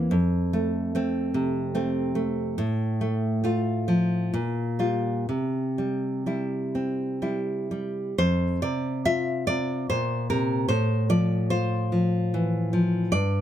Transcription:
Already playing: E3 A#3
0.11 F2
0.53 A3
0.95 A3 C4
1.34 C3
1.75 A3 C4
2.15 A3
2.58 A2
3.01 A3
3.44 A3 F4
3.88 F3
4.34 A#2
4.79 G3 F4
5.29 C3
5.78 G3
6.26 G3 E4
6.75 C4
7.22 G3 E4
7.71 G3
8.18 F2 C5
8.62 C3 D5
9.05 F4 E5
9.47 C3 D5
9.90 A#2 C5
10.30 C3 A#4
10.68 A2 C5
11.10 F3 D5
11.50 F4 C5
11.92 F3
12.34 E3
12.73 F3
13.12 G2 D5

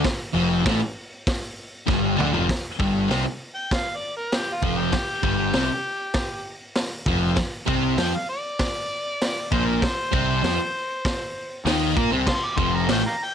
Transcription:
0.04 kick, snare, open hi-hat
0.34 F1 F2 F3
0.65 A1 A2 A3, kick, snare, open hi-hat
1.27 kick, snare, open hi-hat
1.86 G1 G2 G3, kick, snare
2.16 D2 D3 D4, mid tom
2.32 F1 F2 F3, floor tom
2.49 kick, snare, open hi-hat
2.79 G1 G2 G3, kick
3.08 C2 C3 C4, snare, open hi-hat
3.55 G5
3.71 F5, kick, snare, open hi-hat
3.96 D5
4.17 A#4
4.32 G4, snare, open hi-hat
4.54 F4
4.62 F1 F2 F3, kick
4.77 G4
4.92 kick, snare, open hi-hat
5.23 G1 G2 G3, kick
5.53 C2 C3 C4, snare, open hi-hat
6.14 kick, snare, open hi-hat
6.75 snare, open hi-hat
7.06 F1 F2 F3, kick
7.36 kick, snare, open hi-hat
7.66 C2 C3 C4, kick
7.97 F2 F3 F4 G5, snare, open hi-hat
8.15 F5
8.29 D5
8.59 kick, snare, open hi-hat
9.21 snare, open hi-hat
9.51 A#1 A#2 A#3 C5, kick
9.67 A#4
9.82 C5, kick, snare, open hi-hat
10.12 C2 C3 C4, kick
10.43 F2 F3 F4, snare, open hi-hat
11.05 kick, snare, open hi-hat
11.65 D#2 D#3 D#4, snare, open hi-hat
11.96 A#2 A#3 A#4, kick
12.11 C2 C3 C4
12.27 F5 A5 C6, kick, snare, crash
12.45 D6
12.57 F1 F2 F3 C6, kick
12.75 A#5
12.87 A1 A2 A3, snare, open hi-hat
12.92 G5
13.06 F5 G5 A#5
13.24 G5

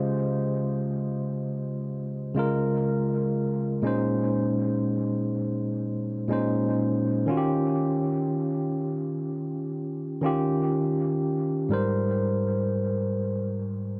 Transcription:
Already playing: C#3 G#3 F4 G4 C5 D#5
2.35 C#3 G#3 F4
2.39 A#4
3.82 A#2 G#3 C#4 D#4
3.87 C5
6.28 A#2 G#3 C#4 D#4
6.33 C5
7.26 D#3 C#4 F4
7.31 F#4
7.37 G4
10.21 D#3 C#4 F4
10.26 G4
11.69 G#2 G3 A#4
11.73 C5

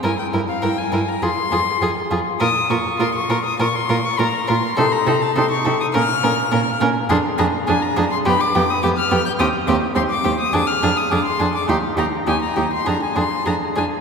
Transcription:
0.03 G2 E4 A#4 G#5
0.19 G5
0.33 G2 E4 A#4
0.49 F5
0.62 G2 E4 A#4 G5
0.78 G#5
0.92 G2 E4 A#4
1.08 A#5
1.22 F2 F4 G#4 C6
1.52 F2 F4 G#4
1.81 F2 F4 G#4
2.11 F2 F4 G#4
2.40 A#2 F4 A#4 D#6
2.70 A#2 F4 A#4 C#6
2.99 A#2 F4 A#4 C6
3.15 C#6
3.30 A#2 F4 A#4
3.45 D#6
3.59 A#2 F4 A#4 C#6
3.75 C6
3.89 A#2 F4 A#4
4.05 C#6
4.19 A#2 F4 A#4 A#5
4.48 A#2 F4 A#4 C6
4.77 C3 D#4 A4 C6
4.92 A#5
5.07 C3 D#4 A4
5.22 A5
5.36 C3 D#4 A4 C6
5.51 C#6
5.65 C3 D#4 A4
5.80 D#6
5.93 A#2 C#4 A#4 F6
6.23 A#2 C#4 A#4
6.52 A#2 C#4 A#4
6.81 A#2 C#4 A#4
7.09 F2 D4 G#4 C6
7.38 F2 D4 G#4 A#5
7.67 F2 D4 G#4 G#5
7.82 A#5
7.97 F2 D4 G#4
8.12 C6
8.25 F2 B3 G4 B5
8.40 D6
8.55 F2 B3 G4
8.70 D#6
8.82 F2 B3 G4 D6
8.97 F6
9.11 F2 B3 G4
9.26 G6
9.39 D#2 C4 G4 D#6
9.67 D#2 C4 G4 D6
9.95 D#2 C4 G4 C6
10.10 D6
10.24 D#2 C4 G4
10.40 D#6
10.53 F2 D4 G#4 D6
10.67 F6
10.82 F2 D4 G#4
10.97 D#6
11.11 F2 D4 G#4 D6
11.25 C6
11.39 F2 D4 G#4
11.55 D6
11.68 D#2 D#4 G4 C6
11.97 D#2 D#4 G4 A#5
12.27 D#2 D#4 G4 G#5
12.42 A#5
12.56 D#2 D#4 G4
12.73 C6
12.86 F2 D4 G#4 A#5
13.02 G#5
13.16 F2 D4 G#4 C6
13.46 F2 D4 G#4 A#5
13.76 F2 D4 G#4 G#5

